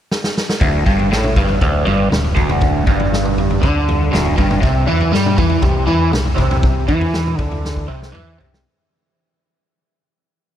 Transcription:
0.11 snare
0.24 snare
0.38 snare
0.49 snare
0.61 D1 D2, kick, floor tom
0.86 G1 G2, kick, floor tom
0.99 floor tom
1.11 A1 A2, snare
1.24 mid tom
1.36 G1 G2, kick, floor tom
1.49 floor tom
1.61 D1 D2, kick, floor tom
1.86 G1 G2, floor tom
2.10 D1 D2, snare, mid tom
2.24 floor tom
2.35 D1 D2, kick, floor tom
2.49 floor tom, mid tom
2.61 kick, floor tom
2.87 G1 G2, kick, floor tom
3.00 floor tom
3.14 snare
3.25 mid tom
3.38 floor tom
3.50 floor tom
3.62 D2 D3, kick, floor tom
3.89 floor tom
4.12 D1 D2, snare, mid tom
4.26 floor tom
4.38 G1 G2, kick, floor tom, mid tom
4.51 floor tom, mid tom
4.62 C2 C3, kick, floor tom
4.87 E2 E3, floor tom
5.00 floor tom
5.12 G2 G3, snare
5.26 mid tom
5.37 E2 E3, kick, floor tom
5.50 floor tom
5.62 C2 C3, kick, floor tom
5.87 E2 E3, floor tom
6.12 C2 C3, snare, mid tom
6.25 floor tom
6.36 C2 C3, kick, floor tom
6.51 floor tom, mid tom
6.63 kick, floor tom
6.88 E2 E3, kick, floor tom
7.01 floor tom
7.14 snare
7.27 mid tom
7.37 D2 D3, kick, floor tom
7.52 floor tom
7.65 snare
7.77 kick
7.88 C2 C3
8.02 snare
8.12 E2 E3, mid tom
8.38 C2 C3, floor tom
8.54 snare

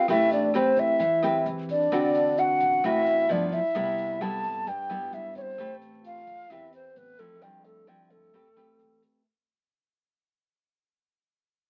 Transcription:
0.08 A1 A3 C4 E4 G4 B4 E5, kick, cross-stick, closed hi-hat
0.31 D4 D5, closed hi-hat
0.54 C4 G4 B4 C5, cross-stick, closed hi-hat
0.77 E2 E4 E5, kick, closed hi-hat
0.99 E2 E3, kick, closed hi-hat
1.23 C4 G4 B4, cross-stick, closed hi-hat
1.46 E2, closed hi-hat
1.69 D4 D5, kick, closed hi-hat
1.92 D2 D3 C4 F#4 B4, kick, cross-stick, closed hi-hat
2.15 closed hi-hat
2.38 F#4 F#5, closed hi-hat
2.60 A1, kick, closed hi-hat
2.84 A1 A2 C4 E4 F#4 B4 E5, kick, cross-stick, closed hi-hat
3.06 closed hi-hat
3.29 G1 F3 B3 D4 E4 D5, closed hi-hat
3.52 E4 E5, closed hi-hat
3.75 C2 C3 G3 B3 E4, kick, cross-stick, closed hi-hat
3.98 closed hi-hat
4.21 G3 B3 E4 A4 A5, cross-stick, closed hi-hat
4.44 G2, kick, closed hi-hat
4.67 G2 G4 G5, kick, closed hi-hat
4.90 G3 B3 E4, cross-stick, closed hi-hat
5.12 G2 E4 E5, closed hi-hat
5.35 C4 C#5, kick, closed hi-hat
5.41 C5
5.58 A1 A3 C4 G4 B4, kick, cross-stick, closed hi-hat
5.82 closed hi-hat
6.03 F4 F5, closed hi-hat
6.27 E2, kick, closed hi-hat
6.49 E2 E3 C4 E4 G4 B4 E5, kick, cross-stick, closed hi-hat
6.71 C4 C5, closed hi-hat
6.94 A1 B3 B4, closed hi-hat
7.17 F3 A3 C4 E4 A4, closed hi-hat
7.39 G1 G2 G3 G5, kick, cross-stick, closed hi-hat
7.62 A3 A4, closed hi-hat
7.85 F3 G3 C4 E4 G5, cross-stick, closed hi-hat
8.09 D2 A3 A4, kick, closed hi-hat
8.34 A1 A3 C4 G4 B4, kick, closed hi-hat
8.56 C4 G4 B4, cross-stick, closed hi-hat
8.79 E2, closed hi-hat
9.03 kick, closed hi-hat

